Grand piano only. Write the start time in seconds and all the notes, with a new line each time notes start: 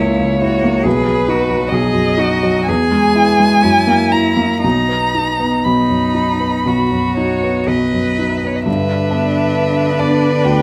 Already playing: C#3 A#3 E4
0.00 C#2
0.19 C#3
0.42 E4
0.64 A#3
0.85 B1
1.06 F#3
1.28 D#4
1.50 F#3
1.72 B1
1.93 F#2
2.18 D#4
2.43 F#3
2.68 E2
2.91 G#3
3.15 E4
3.40 G#3
3.63 F#2
3.87 A#3
4.13 E4
4.37 A#3
4.64 B1
4.89 B3
5.14 D#4
5.40 B3
5.66 B1
5.90 F#2
6.15 D#4
6.40 B3
6.65 B1
6.92 F#2
7.17 D#4
7.43 B3
7.67 B1
7.94 F#2
8.19 D#4
8.44 B3
8.66 G2
9.10 B3 D4 B4
9.99 B3 D4 B4
10.45 D2